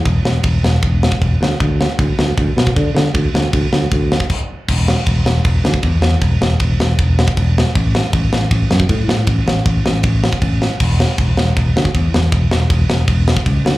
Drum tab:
CC |x---x---x---x---|x---x---x---x---|x---x---x---x---|x---x---x---x---|
SD |--o---o---o---o-|--o---o---o---o-|--o---o---o-----|--o---o---o---o-|
BD |o---o---o--oo---|o---o---o--oo---|o---o---o--oo---|o---o---o--oo---|

CC |x---x---x---x---|x---x---x---x---|x---x---x---x---|x---x---x---x---|
SD |--o---o---o---o-|--o---o---o---o-|--o---o---o---o-|--o---o---o---o-|
BD |o---o---o--oo---|o---o---o--oo---|o---o---o--oo---|o---o---o--oo---|

CC |x---x---x---x---|
SD |--o---o---o---o-|
BD |o---o---o--oo---|